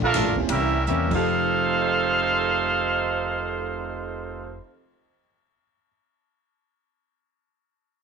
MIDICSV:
0, 0, Header, 1, 7, 480
1, 0, Start_track
1, 0, Tempo, 346021
1, 698, Tempo, 387097
1, 1658, Time_signature, 4, 2, 24, 8
1, 1658, Tempo, 417246
1, 9427, End_track
2, 0, Start_track
2, 0, Title_t, "Trumpet section"
2, 0, Program_c, 0, 61
2, 54, Note_on_c, 0, 77, 99
2, 55, Note_on_c, 0, 69, 95
2, 59, Note_on_c, 0, 70, 100
2, 65, Note_on_c, 0, 62, 94
2, 488, Note_off_c, 0, 77, 0
2, 489, Note_off_c, 0, 69, 0
2, 491, Note_off_c, 0, 70, 0
2, 494, Note_off_c, 0, 62, 0
2, 676, Note_on_c, 0, 67, 86
2, 680, Note_on_c, 0, 61, 86
2, 681, Note_on_c, 0, 70, 88
2, 683, Note_on_c, 0, 76, 101
2, 1117, Note_off_c, 0, 67, 0
2, 1119, Note_off_c, 0, 61, 0
2, 1120, Note_off_c, 0, 70, 0
2, 1121, Note_off_c, 0, 76, 0
2, 1146, Note_on_c, 0, 76, 95
2, 1149, Note_on_c, 0, 67, 76
2, 1149, Note_on_c, 0, 70, 77
2, 1152, Note_on_c, 0, 61, 78
2, 1437, Note_off_c, 0, 76, 0
2, 1438, Note_off_c, 0, 67, 0
2, 1438, Note_off_c, 0, 70, 0
2, 1440, Note_off_c, 0, 61, 0
2, 1478, Note_on_c, 0, 69, 81
2, 1478, Note_on_c, 0, 77, 104
2, 1479, Note_on_c, 0, 63, 81
2, 1484, Note_on_c, 0, 72, 95
2, 5480, Note_off_c, 0, 69, 0
2, 5480, Note_off_c, 0, 77, 0
2, 5481, Note_off_c, 0, 63, 0
2, 5485, Note_off_c, 0, 72, 0
2, 9427, End_track
3, 0, Start_track
3, 0, Title_t, "Upright piano"
3, 0, Program_c, 1, 0
3, 512, Note_on_c, 1, 58, 70
3, 523, Note_on_c, 1, 60, 69
3, 524, Note_on_c, 1, 61, 64
3, 533, Note_on_c, 1, 64, 58
3, 538, Note_on_c, 1, 67, 75
3, 679, Note_off_c, 1, 58, 0
3, 685, Note_off_c, 1, 60, 0
3, 685, Note_off_c, 1, 61, 0
3, 690, Note_off_c, 1, 64, 0
3, 692, Note_off_c, 1, 67, 0
3, 1400, Note_on_c, 1, 41, 68
3, 1433, Note_on_c, 1, 53, 68
3, 1474, Note_on_c, 1, 63, 66
3, 1509, Note_on_c, 1, 67, 64
3, 1539, Note_on_c, 1, 69, 74
3, 2158, Note_on_c, 1, 72, 43
3, 2241, Note_on_c, 1, 75, 41
3, 2342, Note_on_c, 1, 79, 36
3, 2560, Note_on_c, 1, 87, 39
3, 2956, Note_on_c, 1, 99, 31
3, 5454, Note_off_c, 1, 41, 0
3, 5484, Note_off_c, 1, 53, 0
3, 5522, Note_off_c, 1, 63, 0
3, 5555, Note_off_c, 1, 67, 0
3, 5583, Note_off_c, 1, 69, 0
3, 6146, Note_off_c, 1, 72, 0
3, 6230, Note_off_c, 1, 75, 0
3, 6331, Note_off_c, 1, 79, 0
3, 6549, Note_off_c, 1, 87, 0
3, 6945, Note_off_c, 1, 99, 0
3, 9427, End_track
4, 0, Start_track
4, 0, Title_t, "Hollow-body jazz guitar"
4, 0, Program_c, 2, 26
4, 209, Note_on_c, 2, 46, 72
4, 221, Note_on_c, 2, 53, 69
4, 229, Note_on_c, 2, 57, 63
4, 242, Note_on_c, 2, 62, 69
4, 529, Note_off_c, 2, 46, 0
4, 535, Note_off_c, 2, 53, 0
4, 539, Note_off_c, 2, 57, 0
4, 545, Note_off_c, 2, 62, 0
4, 708, Note_on_c, 2, 48, 51
4, 722, Note_on_c, 2, 52, 49
4, 736, Note_on_c, 2, 58, 47
4, 745, Note_on_c, 2, 61, 59
4, 1005, Note_off_c, 2, 48, 0
4, 1012, Note_off_c, 2, 52, 0
4, 1019, Note_off_c, 2, 58, 0
4, 1024, Note_off_c, 2, 61, 0
4, 1172, Note_on_c, 2, 48, 61
4, 1183, Note_on_c, 2, 52, 66
4, 1188, Note_on_c, 2, 58, 69
4, 1196, Note_on_c, 2, 61, 76
4, 1447, Note_off_c, 2, 52, 0
4, 1452, Note_on_c, 2, 53, 72
4, 1472, Note_off_c, 2, 48, 0
4, 1473, Note_off_c, 2, 58, 0
4, 1478, Note_on_c, 2, 57, 78
4, 1484, Note_off_c, 2, 61, 0
4, 1501, Note_on_c, 2, 63, 80
4, 1524, Note_on_c, 2, 67, 75
4, 5502, Note_off_c, 2, 53, 0
4, 5526, Note_off_c, 2, 57, 0
4, 5548, Note_off_c, 2, 63, 0
4, 5569, Note_off_c, 2, 67, 0
4, 9427, End_track
5, 0, Start_track
5, 0, Title_t, "Trombone section"
5, 0, Program_c, 3, 61
5, 48, Note_on_c, 3, 57, 99
5, 49, Note_on_c, 3, 62, 93
5, 50, Note_on_c, 3, 65, 101
5, 485, Note_off_c, 3, 57, 0
5, 485, Note_off_c, 3, 62, 0
5, 486, Note_off_c, 3, 65, 0
5, 658, Note_on_c, 3, 55, 84
5, 659, Note_on_c, 3, 58, 88
5, 662, Note_on_c, 3, 64, 96
5, 1109, Note_off_c, 3, 55, 0
5, 1109, Note_off_c, 3, 58, 0
5, 1111, Note_off_c, 3, 64, 0
5, 1137, Note_on_c, 3, 55, 72
5, 1137, Note_on_c, 3, 58, 74
5, 1147, Note_on_c, 3, 64, 81
5, 1432, Note_off_c, 3, 55, 0
5, 1432, Note_off_c, 3, 58, 0
5, 1437, Note_off_c, 3, 64, 0
5, 1443, Note_on_c, 3, 48, 100
5, 1443, Note_on_c, 3, 57, 94
5, 1446, Note_on_c, 3, 41, 104
5, 1448, Note_on_c, 3, 51, 102
5, 5447, Note_off_c, 3, 48, 0
5, 5447, Note_off_c, 3, 57, 0
5, 5450, Note_off_c, 3, 41, 0
5, 5452, Note_off_c, 3, 51, 0
5, 9427, End_track
6, 0, Start_track
6, 0, Title_t, "Upright bass"
6, 0, Program_c, 4, 32
6, 0, Note_on_c, 4, 34, 85
6, 198, Note_off_c, 4, 34, 0
6, 217, Note_on_c, 4, 33, 93
6, 369, Note_on_c, 4, 29, 68
6, 390, Note_off_c, 4, 33, 0
6, 529, Note_off_c, 4, 29, 0
6, 537, Note_on_c, 4, 26, 70
6, 684, Note_off_c, 4, 26, 0
6, 693, Note_on_c, 4, 36, 96
6, 1144, Note_off_c, 4, 36, 0
6, 1162, Note_on_c, 4, 40, 102
6, 1443, Note_off_c, 4, 40, 0
6, 1451, Note_on_c, 4, 29, 89
6, 5455, Note_off_c, 4, 29, 0
6, 9427, End_track
7, 0, Start_track
7, 0, Title_t, "Drums"
7, 28, Note_on_c, 9, 36, 59
7, 167, Note_off_c, 9, 36, 0
7, 191, Note_on_c, 9, 44, 61
7, 191, Note_on_c, 9, 51, 76
7, 197, Note_on_c, 9, 38, 79
7, 330, Note_off_c, 9, 44, 0
7, 330, Note_off_c, 9, 51, 0
7, 336, Note_off_c, 9, 38, 0
7, 499, Note_on_c, 9, 36, 62
7, 638, Note_off_c, 9, 36, 0
7, 675, Note_on_c, 9, 51, 72
7, 802, Note_off_c, 9, 51, 0
7, 1147, Note_on_c, 9, 44, 56
7, 1271, Note_off_c, 9, 44, 0
7, 1451, Note_on_c, 9, 36, 60
7, 1451, Note_on_c, 9, 49, 65
7, 1575, Note_off_c, 9, 36, 0
7, 1575, Note_off_c, 9, 49, 0
7, 9427, End_track
0, 0, End_of_file